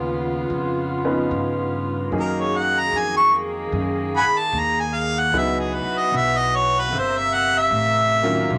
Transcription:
0.00 0.48 D#2 medium
0.00 2.09 C#3 medium
0.00 0.13 F3 medium
0.00 0.12 B3 medium
0.00 2.08 B3 medium
0.00 0.13 C#4 medium
0.00 0.13 D#4 medium
0.00 2.09 F4 medium
0.00 0.13 G#4 medium
0.50 1.28 F2 medium
1.04 2.07 F3 medium
1.04 2.07 B3 medium
1.04 2.07 C#4 medium
1.04 2.07 D#4 medium
1.04 2.07 B4 medium
1.31 2.09 G2 medium
2.09 2.90 F#2 medium
2.09 5.28 D#3 medium
2.09 2.60 F#3 medium
2.09 5.28 A#3 medium
2.09 2.60 A#3 medium
2.09 2.60 C#4 medium
2.09 2.60 D#4 medium
2.09 5.29 G#4 medium
2.09 2.60 G#4 medium
2.20 2.43 A#4 medium
2.41 2.59 C#5 medium
2.58 2.81 F#5 medium
2.79 3.00 A#5 medium
2.92 3.70 F2 medium
2.98 3.16 G#5 medium
3.17 3.33 C#6 medium
3.72 4.22 F#2 medium
4.17 4.25 F#5 medium
4.17 4.25 G#5 medium
4.17 4.40 B5 medium
4.26 muted upright bass stroke soft
4.39 4.61 A5 medium
4.53 5.30 D#2 medium
4.59 4.82 A#5 medium
4.80 4.96 G#5 medium
4.95 5.21 F5 medium
5.20 5.40 F#5 medium
5.31 5.81 C#2 medium
5.31 6.90 E3 medium
5.31 6.55 F#3 medium
5.31 6.89 B3 medium
5.31 6.55 B3 soft
5.31 6.55 D#4 medium
5.31 6.55 E4 medium
5.31 6.89 F#4 medium
5.31 6.55 G#4 medium
5.38 5.61 E5 medium
5.60 5.77 G#4 medium
5.75 5.99 B4 medium
5.86 muted upright bass stroke soft
5.98 6.18 D#5 medium
6.12 6.89 B1 medium
6.17 6.39 E5 medium
6.38 6.57 D#5 medium
6.55 6.82 C#5 medium
6.80 7.01 B4 medium
6.91 7.69 G1 medium
6.91 8.48 C3 medium
6.91 8.58 A#3 medium
6.91 8.48 E5 medium
6.99 7.19 C5 medium
7.18 7.36 E5 medium
7.35 7.60 F#5 medium
7.58 8.58 E5 medium
7.71 8.48 A1 medium
8.23 8.47 D#3 medium
8.23 8.47 F#3 medium
8.23 8.47 C#4 medium
8.23 8.48 F4 medium
8.23 8.48 A#4 medium
8.49 8.58 B1 medium
8.49 8.58 D#3 medium
8.49 8.58 C#4 medium
8.49 8.58 F4 medium

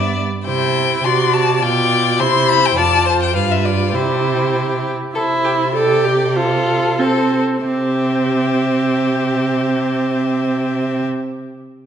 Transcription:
0.00 0.25 G2 soft
0.00 0.26 B3 soft
0.00 0.25 D5 soft
0.00 0.16 E5 medium
0.45 1.01 C3 soft
0.45 1.06 E4 soft
0.45 1.00 C5 soft
0.45 1.06 G5 medium
1.05 1.64 C3 soft
1.05 1.62 F#4 soft
1.05 1.61 D5 soft
1.05 1.35 C6 medium
1.33 1.55 A5 medium
1.56 1.65 A5 medium
1.62 2.22 B2 medium
1.62 2.22 F4 soft
1.62 2.21 D5 soft
1.62 2.22 G5 medium
2.20 2.77 C3 medium
2.20 2.79 E4 medium
2.20 2.78 C5 medium
2.20 2.51 C6 medium
2.49 2.67 B5 medium
2.65 2.78 G5 medium
2.76 3.36 F2 medium
2.76 3.35 F4 soft
2.76 3.07 D5 soft
2.76 3.21 A5 medium
3.06 3.37 C5 soft
3.23 3.35 G5 medium
3.35 3.96 G2 medium
3.35 3.96 F4 soft
3.35 3.94 B4 medium
3.35 3.53 F5 medium
3.52 3.67 E5 medium
3.65 3.96 D5 medium
3.94 4.94 C3 soft
3.94 4.95 E4 soft
3.94 4.92 G4 soft
3.94 4.85 C5 soft
5.15 7.38 C3 soft
5.15 5.71 E4 medium
5.15 5.23 A4 soft
5.15 5.77 C5 soft
5.44 5.52 G4 soft
5.75 6.35 G4 soft
5.75 6.07 A4 medium
5.75 6.37 D5 soft
6.05 6.37 G4 medium
6.36 7.00 F4 medium
6.36 6.98 A4 soft
6.36 6.99 C5 soft
6.98 7.65 C4 medium
6.98 7.41 A4 soft
6.98 7.42 C5 soft
7.65 11.05 C3 soft
7.65 11.05 C4 soft
7.65 11.05 G4 soft
7.65 11.05 E5 soft

